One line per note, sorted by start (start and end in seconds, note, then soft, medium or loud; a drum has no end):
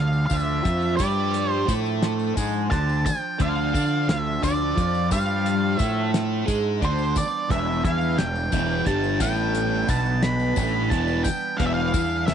0.00 0.28 D2 medium
0.00 0.24 D3 medium
0.00 6.99 F3 medium
0.00 12.34 D4 medium
0.00 3.02 F4 medium
0.00 0.26 F5 medium
0.13 tambourine soft
0.26 0.64 D3 medium
0.26 0.37 F5 loud
0.26 tambourine medium
0.31 0.63 D2 medium
0.31 0.64 D4 medium
0.31 kick loud
0.31 closed hi-hat medium
0.37 0.96 E5 loud
0.64 0.97 F2 medium
0.64 0.98 F3 medium
0.64 0.99 F4 loud
0.64 kick loud
0.64 closed hi-hat medium
0.64 tambourine soft
0.82 tambourine soft
0.97 1.64 G2 medium
0.97 1.67 G3 medium
0.97 1.67 G4 loud
0.97 1.52 D5 medium
0.97 kick loud
0.97 closed hi-hat medium
0.97 tambourine medium
1.34 closed hi-hat medium
1.34 tambourine soft
1.52 1.71 C5 medium
1.68 2.33 A2 medium
1.68 2.36 A3 medium
1.68 2.36 A4 loud
1.68 kick loud
1.68 closed hi-hat medium
1.68 tambourine medium
1.86 tambourine soft
2.02 snare loud
2.02 closed hi-hat medium
2.19 tambourine soft
2.37 2.69 G#2 medium
2.37 2.70 G#3 loud
2.37 2.70 G#4 loud
2.37 kick loud
2.37 closed hi-hat medium
2.37 tambourine loud
2.71 3.03 D2 loud
2.71 3.04 D3 medium
2.71 3.05 D4 loud
2.71 3.06 A5 loud
2.71 kick loud
2.71 closed hi-hat medium
2.71 tambourine soft
2.89 tambourine soft
3.05 6.99 F4 medium
3.05 3.41 G5 medium
3.05 kick medium
3.05 closed hi-hat medium
3.05 tambourine loud
3.40 3.72 D2 loud
3.40 3.73 D3 medium
3.40 3.72 D4 loud
3.40 4.09 F5 medium
3.40 kick loud
3.40 closed hi-hat medium
3.40 tambourine soft
3.73 4.06 D3 medium
3.73 4.07 D4 medium
3.73 4.07 D5 medium
3.73 kick loud
3.73 closed hi-hat medium
3.73 tambourine medium
4.07 4.40 D2 medium
4.07 4.36 D3 medium
4.07 4.44 E5 medium
4.07 snare loud
4.07 closed hi-hat medium
4.42 4.75 D2 medium
4.42 4.75 D3 loud
4.42 4.76 D4 loud
4.42 5.08 D5 medium
4.42 kick medium
4.42 closed hi-hat medium
4.42 tambourine loud
4.76 5.09 F2 medium
4.76 5.09 F3 loud
4.76 5.10 F4 loud
4.76 kick loud
4.76 closed hi-hat medium
4.76 tambourine soft
4.94 tambourine soft
5.10 5.76 G2 medium
5.10 5.78 G3 loud
5.10 5.78 G4 loud
5.10 5.77 F5 medium
5.10 kick loud
5.10 closed hi-hat medium
5.10 tambourine loud
5.28 tambourine soft
5.46 closed hi-hat medium
5.46 tambourine soft
5.77 6.44 A2 medium
5.77 6.46 A3 medium
5.77 6.47 A4 loud
5.77 6.10 E5 medium
5.77 kick loud
5.77 closed hi-hat medium
5.77 tambourine medium
6.14 snare loud
6.14 closed hi-hat medium
6.47 6.80 G#2 medium
6.47 6.80 G#3 medium
6.47 6.81 G#4 loud
6.47 kick loud
6.47 closed hi-hat medium
6.47 tambourine medium
6.81 7.14 D2 medium
6.81 7.14 D3 medium
6.81 7.15 D4 loud
6.81 kick loud
6.81 closed hi-hat medium
6.85 7.15 C5 medium
6.98 tambourine soft
7.16 12.34 E3 medium
7.16 12.34 G3 medium
7.16 12.34 B3 medium
7.16 7.51 D5 medium
7.16 kick loud
7.16 closed hi-hat medium
7.16 tambourine medium
7.49 7.82 E1 loud
7.49 7.83 E2 medium
7.49 7.82 E3 loud
7.49 7.83 E5 medium
7.49 kick loud
7.49 closed hi-hat medium
7.49 tambourine soft
7.83 8.16 E2 medium
7.83 8.17 E3 loud
7.83 8.17 E4 medium
7.83 8.20 F5 medium
7.83 kick loud
7.83 closed hi-hat medium
8.01 tambourine soft
8.18 8.50 E1 medium
8.18 8.46 E2 medium
8.18 8.87 G5 medium
8.18 snare loud
8.18 closed hi-hat medium
8.35 tambourine soft
8.52 8.85 E1 medium
8.52 8.86 E2 medium
8.52 8.86 E3 loud
8.52 kick loud
8.52 closed hi-hat medium
8.52 tambourine medium
8.86 9.18 G1 medium
8.86 9.20 G2 medium
8.86 9.20 G3 medium
8.86 9.21 A5 medium
8.86 kick loud
8.86 closed hi-hat medium
8.86 tambourine soft
9.04 tambourine soft
9.20 9.85 A1 medium
9.20 9.88 A2 medium
9.20 9.88 A3 loud
9.20 9.90 G5 medium
9.20 kick loud
9.20 closed hi-hat medium
9.20 tambourine loud
9.55 closed hi-hat medium
9.55 tambourine soft
9.88 10.53 B1 medium
9.88 10.56 B2 medium
9.88 10.56 B3 medium
9.88 10.25 A5 loud
9.88 kick loud
9.88 closed hi-hat medium
9.88 tambourine medium
10.06 tambourine soft
10.23 10.93 B5 medium
10.23 snare loud
10.23 closed hi-hat medium
10.40 tambourine soft
10.56 10.89 A1 medium
10.56 10.90 A2 medium
10.56 10.91 A3 loud
10.56 kick loud
10.56 closed hi-hat medium
10.56 tambourine medium
10.90 11.23 E1 medium
10.90 11.24 E2 medium
10.90 11.25 E3 loud
10.90 11.24 A5 medium
10.90 kick loud
10.90 closed hi-hat medium
10.90 tambourine soft
11.08 tambourine soft
11.24 11.60 G5 medium
11.24 kick medium
11.24 closed hi-hat medium
11.24 tambourine loud
11.57 11.92 E1 loud
11.57 11.93 E2 medium
11.57 11.93 E3 loud
11.57 11.66 F5 medium
11.57 kick loud
11.57 closed hi-hat medium
11.57 tambourine soft
11.66 11.74 E5 medium
11.74 12.26 F5 loud
11.94 12.26 E2 loud
11.94 12.27 E3 medium
11.94 12.28 E4 loud
11.94 kick loud
11.94 closed hi-hat medium
11.94 tambourine medium
12.11 tambourine soft
12.27 12.34 E1 medium
12.27 12.34 E2 medium
12.27 12.34 E5 medium
12.27 snare loud
12.27 closed hi-hat medium